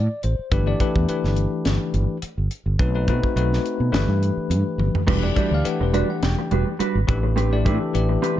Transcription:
Already playing: D5
0.23 A1 C5, closed hi-hat
0.39 muted fretless electric bass stroke
0.52 G1 E3 A3 D4 G4 B4, kick, closed hi-hat
0.66 E3 A3 D4 G4 D5
0.80 E3 A3 D4 G4 B4, kick, closed hi-hat
0.96 E2, kick
1.08 E3 A3 D4 G4 B4, muted fretless electric bass stroke, closed hi-hat
1.24 G1, snare
1.36 closed hi-hat
1.65 G1, snare, closed hi-hat
1.94 G1, closed hi-hat
2.22 muted fretless electric bass stroke, closed hi-hat
2.38 G1
2.51 closed hi-hat
2.66 G1
2.79 B1 A3 C4 D#4 F#4 B4, kick, closed hi-hat
2.95 A3 C4 D#4 F#4 B4
3.08 B2 A3 C4 D#4 F#4 B4, kick, closed hi-hat
3.23 kick
3.36 B1 A3 C4 D#4 F#4 B4, closed hi-hat
3.53 snare
3.66 closed hi-hat
3.80 B2
3.92 G1 E3 A3 D4 G4 B4, snare, closed hi-hat
4.08 G2
4.23 closed hi-hat
4.37 muted fretless electric bass stroke
4.50 G2, closed hi-hat
4.78 G1, high tom
4.95 floor tom
5.07 E1 E3 G3 A3 D4 F#4 G4 B4, kick, crash
5.23 E3 A3 D4 G4 D5
5.35 E3 G3 A3 D4 F#4 G4 B4 D5 G5, kick, closed hi-hat
5.51 D2 F5, muted clean electric guitar stroke
5.64 E3 A3 D4 G4 B4 F#5, closed hi-hat
5.81 E1 B4, muted clean electric guitar stroke
5.93 G3 D4 F#4 B4 D5, closed hi-hat
6.10 F#5, muted clean electric guitar stroke
6.23 E1 G5, muted clean electric guitar stroke, snare, closed hi-hat
6.38 muted clean electric guitar stroke
6.51 E1 G3 D4 F#4 B4, closed hi-hat
6.67 muted clean electric guitar stroke
6.79 G3 D4 F#4 B4, muted fretless electric bass stroke, closed hi-hat
6.95 G#1
7.07 A1 E3 A3 D4 G4 B4, muted clean electric guitar stroke, kick, closed hi-hat
7.23 muted clean electric guitar stroke
7.36 C4 D4 G4 B4, closed hi-hat
7.52 E3 A3 D4 G4 D5
7.65 A2 E3 A3 C4 D4 G4 A4 B4, kick, closed hi-hat
7.80 muted clean electric guitar stroke
7.94 A1 E3 A3 D4 G4 B4 E5, closed hi-hat
8.09 muted clean electric guitar stroke
8.22 C4 D4 G4 B4, closed hi-hat

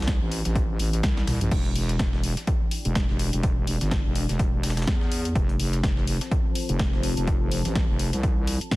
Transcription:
Already playing: C2 A3 E4 C5
0.02 snare, closed hi-hat
0.07 kick, snare, closed hi-hat
0.21 A1
0.31 closed hi-hat, open hi-hat
0.45 A1, snare, closed hi-hat
0.55 kick, closed hi-hat
0.79 A1, closed hi-hat, open hi-hat
0.93 closed hi-hat
1.03 C2, kick, snare, closed hi-hat, high tom
1.17 snare
1.27 snare, closed hi-hat, open hi-hat, mid tom
1.41 A1, closed hi-hat, mid tom
1.51 E1 D5 G5, kick, closed hi-hat, crash
1.65 closed hi-hat
1.75 closed hi-hat, open hi-hat
1.89 snare, closed hi-hat
1.99 E1, kick, snare, closed hi-hat
2.13 snare
2.23 closed hi-hat, open hi-hat
2.37 snare, closed hi-hat
2.47 kick, closed hi-hat
2.71 closed hi-hat, open hi-hat
2.85 E1, closed hi-hat
2.95 kick, snare, closed hi-hat
3.09 E1, snare
3.19 closed hi-hat, open hi-hat
3.33 E1, closed hi-hat
3.43 kick, closed hi-hat
3.67 E1, closed hi-hat, open hi-hat
3.81 G1, snare, closed hi-hat
3.91 kick, snare, closed hi-hat
4.05 E1
4.15 closed hi-hat, open hi-hat
4.29 E1, snare, closed hi-hat
4.39 kick, closed hi-hat
4.63 E1, snare, closed hi-hat, open hi-hat
4.70 snare, closed hi-hat
4.77 snare, closed hi-hat
4.82 snare, closed hi-hat
4.87 E2, kick, snare, closed hi-hat
5.01 snare
5.12 closed hi-hat, open hi-hat
5.25 closed hi-hat
5.35 F1 F4 C5 A5, kick, closed hi-hat
5.49 closed hi-hat
5.60 closed hi-hat, open hi-hat
5.73 snare, closed hi-hat
5.83 F1, kick, snare, closed hi-hat
5.97 snare
6.07 closed hi-hat, open hi-hat
6.21 snare, closed hi-hat
6.31 kick, closed hi-hat
6.55 closed hi-hat, open hi-hat
6.69 F1, closed hi-hat
6.79 kick, snare, closed hi-hat
6.93 F1, snare
7.03 closed hi-hat, open hi-hat
7.17 F1, closed hi-hat
7.27 kick, closed hi-hat
7.51 F1, closed hi-hat, open hi-hat
7.65 A1, snare, closed hi-hat
7.75 kick, snare, closed hi-hat
7.89 F1
7.99 closed hi-hat, open hi-hat
8.13 C2, snare, closed hi-hat
8.23 kick, closed hi-hat
8.47 closed hi-hat, open hi-hat
8.61 closed hi-hat
8.71 kick, snare, closed hi-hat

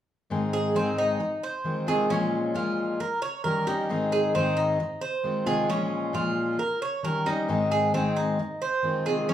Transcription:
0.30 G#2 D#3 G#3 C4 D#4 G#4
0.53 G#4
0.75 G#2 D#3 G#3 C4 D#4 G#4
0.98 D#4
1.19 muted steel-string acoustic guitar stroke
1.43 C5
1.64 D#3 G#3 C4 F4
1.87 C3 D#3 G#3 C4 F4 G#4
2.09 A#2 F3 G#3 C#4 F4
2.54 A#2 F3 G#3 C#4 F4
3.00 A#4, muted steel-string acoustic guitar stroke
3.22 C#5
3.44 D#3 G3 C#4 G4 A#4
3.67 G3 C#4 D#4 G4
3.89 G#2 D#3 G#3 C4 D#4 G#4
4.12 G#4
4.34 G#2 D#3 G#3 C4 D#4 G#4
4.57 D#4
4.80 muted steel-string acoustic guitar stroke
5.01 C5
5.23 D#3 G#3 C4 F4
5.46 C3 D#3 G#3 C4 F4 G#4
5.68 A#2 F3 G#3 C#4 F4
6.13 A#2 F3 G#3 C#4 F4
6.58 A#4, muted steel-string acoustic guitar stroke
6.82 C#5
7.03 D#3 G3 C#4 G4 A#4
7.26 G3 C#4 D#4 G4
7.48 G#2 D#3 G#3 C4 D#4 G#4
7.72 G#4
7.93 G#2 D#3 G#3 C4 D#4 G#4
8.16 D#4
8.39 muted steel-string acoustic guitar stroke
8.62 C5
8.83 D#3 G#3 C4 F4
9.06 C3 D#3 G#3 C4 F4 G#4
9.28 A#2 F3 G#3 C#4 F4

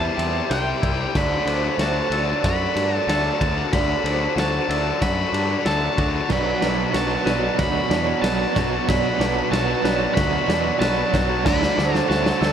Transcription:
Already playing: C3 G3 C4 E4 C5 E5 A5
0.01 C3
0.07 C3 G3
0.14 E2 C3 G3 C4 E5
0.19 G3, ride
0.24 C3
0.30 C3 G3
0.38 C3 G3
0.45 C3 G3
0.49 C2 C5 G5, snare, ride
0.54 C3 G3
0.61 C3 G3
0.68 C3 G3
0.77 C3 G3
0.82 C2 C3 G3 E4, kick, ride
0.92 C3 G3
1.00 C3 G3
1.07 C3 G3
1.14 D2 D3 F#3 A3 D4 F#4 D5 B5, kick, snare, crash
1.22 D3 F#3
1.30 D3 F#3
1.38 D3 F#3
1.46 D2 D3 F#3 D4 C5, ride
1.54 D3 F#3
1.62 D3 F#3
1.69 D3 F#3
1.76 D2 D3 F#3 F#4, snare, ride
1.81 D3 A5
1.86 F#3
1.92 D3 F#3
2.00 D3 F#3
2.08 D2 D3 F#3, ride
2.13 D3 F#3 A4
2.23 D3 F#3
2.31 D3 F#3
2.40 F#2 D3 F#3
2.44 D3 F#3 F#4 B5, kick, snare, ride
2.54 D3 F#3
2.62 D3 F#3
2.70 D3 F#3
2.76 G2 D3 F#3 D4 D5, ride
2.85 D3 F#3
2.94 D3 F#3 A5
3.01 D3 F#3
3.07 D2 D3 F#3 A4 A5, snare, ride
3.17 D3 F#3
3.24 D3 F#3
3.32 D3 F#3
3.40 D2 D3 F#3 F#4, kick, ride
3.48 D3 F#3
3.56 D3 F#3
3.64 D3 F#3
3.72 D2 D3 F#3 D5 B5, kick, snare, ride
3.80 D3 F#3
3.87 D3 F#3
3.95 D3 F#3
4.01 D2 D3 F#3 D4 C5
4.06 ride
4.10 D3 F#3
4.19 D3 F#3
4.25 D3 F#3
4.33 D2 D3 F#3
4.37 D3 F#4 A5, snare, ride
4.43 F#3
4.48 D3 F#3
4.56 D3 F#3
4.64 D3 F#3
4.69 D2 D3 A4 D5, ride
4.75 F#3
4.79 D3 F#3
4.86 D3
4.91 D3 F#3
4.98 F#2 D3 F#3 F#4, kick, snare, ride
5.02 F#3 B5
5.09 D3
5.13 D3 F#3
5.21 D3 F#3
5.29 G2 D3 F#3
5.33 F#3 D4 D5, ride
5.39 D3
5.45 D3 F#3
5.53 D3 F#3
5.60 D3 F#3
5.65 D2 D3 F#3 A4 A5, snare, ride
5.76 D3 F#3
5.84 D3 F#3
5.91 D3 F#3
5.97 D2 D3 F#3 F#4, kick, ride
6.08 D3 F#3
6.16 D3 F#3
6.22 D3 F#3
6.30 B1 B2 F#3 B3 D5 B5, kick, snare, crash
6.39 B2 F#3
6.46 B2 F#3
6.54 B2 F#3
6.62 B1 B2 F#3 D4 B4, snare, ride
6.69 B2 F#3
6.77 B2 F#3
6.86 B2 F#3
6.92 B1 B2 F#3 F#4, snare, ride
6.96 B2 A5
7.02 F#3
7.08 B2 F#3
7.16 B2 F#3
7.22 B1 B2 F#3 B4 D5
7.27 snare, ride
7.32 B2 F#3
7.40 B2 F#3
7.47 B2 F#3
7.55 D2 B2 F#3 F#4, kick, snare, ride
7.60 B2 F#3 B5
7.71 B2 F#3
7.78 B2 F#3
7.86 B2 F#3
7.90 E2 B2 D4 D5, snare, ride
7.94 F#3
8.01 B2 F#3
8.09 B2 F#3
8.16 B2 F#3
8.22 B1 B2 B4 A5, snare, ride
8.26 F#3
8.33 B2 F#3
8.40 B2 F#3
8.47 B2 F#3
8.55 B1 B2 F#3 F#4, kick, snare, ride
8.63 B2 F#3
8.71 B2 F#3
8.78 B2 F#3
8.87 B1 B2 F#3 D5 B5, kick, snare, ride
8.96 B2 F#3
9.04 B2 F#3
9.12 B2 F#3
9.19 B1 B2 F#3 D4 B4, snare, ride
9.27 B2 F#3
9.35 B2 F#3
9.43 B2 F#3
9.50 B1 B2 F#3 F#4 A5, snare, ride
9.58 B2 F#3
9.62 B2
9.67 B2 F#3
9.74 B2 F#3
9.81 B1 B2 F#3 B4 D5
9.85 F#3, snare, ride
9.89 B2
9.96 B2 F#3
10.00 B2
10.05 B2 F#3
10.12 B2 F#3 F#4 B5
10.17 D2 B2 F#3, kick, snare, ride
10.27 B2 F#3
10.32 B2
10.36 B2 F#3
10.43 B2 F#3
10.48 E2 B2 F#3 D4 D5, snare, ride
10.59 B2 F#3
10.67 B2 F#3
10.76 B2 F#3 A5
10.80 B1 B2 F#3 B4, snare, ride
10.91 B2 F#3
10.98 B2 F#3
11.06 B2 F#3
11.12 B1 B2 F#3 F#4, kick, snare, ride
11.22 B2 F#3
11.29 B2 F#3
11.38 B2 F#3
11.44 D2 D3 F#3 A3 D5 B5, kick, snare, crash
11.53 D3 F#3
11.60 D3 F#3, snare
11.68 D3 F#3
11.75 D2 D3 F#3 D4 C5, snare
11.84 D3 F#3
11.91 D3 F#3, snare
11.96 D3 F#3 A5
12.07 D2 D3 F#3 F#4 A5
12.11 D3, snare
12.15 F#3
12.22 D3 F#3, snare
12.29 D3 F#3
12.38 D2 D3 F#3 A4 D5
12.42 D3 F#3, snare

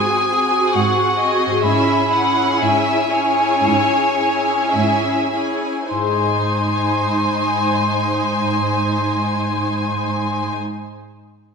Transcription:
Already playing: G#2 G#3 C4 F#4 G#4 C5 G#5 D#6
0.28 C4 F#4 G#4 G#5
0.73 G#2 F#5 C#6
1.18 C4 F#4 G#4 D#5 G#5
1.46 G#2
1.51 G#3
1.55 E4
1.60 C#5 B5
1.64 G#2 C#4 E4 G#4 E5 G#5
2.11 C#4 E4 G#4 F#5 G#5
2.60 G#2 E5 G#5
3.11 C#4 E4 G#4 C#5 G#5
3.64 G#2
4.16 C#4 E4 G#4 G#5
4.72 G#2 E5
5.32 C#4 E4 G#4 G#5
5.90 G#2 D#4 C5 G#5 C6
5.97 G#3
6.05 D#4
6.11 C5
6.18 D#5

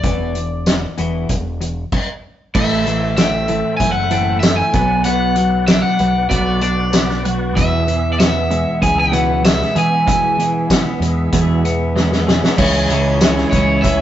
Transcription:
Already playing: D5
0.03 E1 E2 B2 E3, kick, closed hi-hat
0.35 E2 B2, closed hi-hat
0.66 E2 B2, snare, closed hi-hat, tambourine
0.98 E1 E2 B2 E3, closed hi-hat
1.29 E1 E2 B2, kick, closed hi-hat
1.61 E2 B2, closed hi-hat
1.92 kick, crash
2.55 A1 A2 E3 A3 A4 C5 E5, kick, crash
2.86 A2 E3, closed hi-hat
3.17 A2 E3 C4 E5, snare, closed hi-hat, tambourine
3.48 A2 E3 A3, closed hi-hat
3.77 F#1 A2 E4 G#5, kick, closed hi-hat
3.81 E3
3.92 F#5
4.11 A2 E3 A3 C4, closed hi-hat
4.40 A3 E5, snare, closed hi-hat, tambourine
4.44 A2 E3
4.57 G#5
4.73 B1 B2 F#3 B3 B4 D5 F#5, kick, closed hi-hat
5.04 B2 F#3 B3 F#5, closed hi-hat
5.36 B2 F#3, closed hi-hat
5.67 B2 F#3 D4 E5, snare, closed hi-hat, tambourine
5.82 F#5
5.99 B1 B2 F#3 B3, closed hi-hat
6.29 B1 B2 F#3 B3 F#4 D5, kick, closed hi-hat
6.61 B2 F#3 D4 D5, closed hi-hat
6.93 B2 F#3 B3, snare, closed hi-hat, tambourine
7.10 snare
7.25 B2 F#3 F#4, closed hi-hat
7.55 E2 B2 E3 G#4 E5, kick, closed hi-hat
7.88 E2 B2 E3, closed hi-hat
8.13 D5
8.19 E2 B2 B3 E5, snare, closed hi-hat, tambourine
8.51 E2 B2 G#3, closed hi-hat
8.82 C#2 E2 B2 G#4 G#5, kick, closed hi-hat
9.00 F#5
9.12 E2 B2 E3 B3, closed hi-hat
9.43 E2 B2 G#3 E5, snare, closed hi-hat, tambourine
9.62 snare
9.75 E2 B2 E3 G#4 G#5, closed hi-hat
10.07 E2 B2 E3, kick, closed hi-hat
10.38 E2 B2 E3, closed hi-hat
10.70 E2 B2 B3, kick, snare, closed hi-hat, tambourine
11.00 E2 B2 G#3, closed hi-hat
11.33 E2 B2 E3 G#4, kick, closed hi-hat
11.65 E2 B2 B3, closed hi-hat
11.96 E2 B2 G#3, snare
12.12 snare
12.27 E2 B2 G#4, snare
12.44 snare
12.57 C#2 C#3 E3 G#3 C#4 E4 G#4 C#5 G#5, kick, crash
12.89 C#2 C#3 E3 G#3 C#4 E4, closed hi-hat
13.20 C#3 E3 G#3 C#4 E4, snare, closed hi-hat, tambourine
13.37 snare
13.51 C#2 C#3 E3 G#3 C#4 E4 C#5, kick, closed hi-hat
13.82 C#2 C#3 E3 G#3 C#4 E4 E5, kick, closed hi-hat

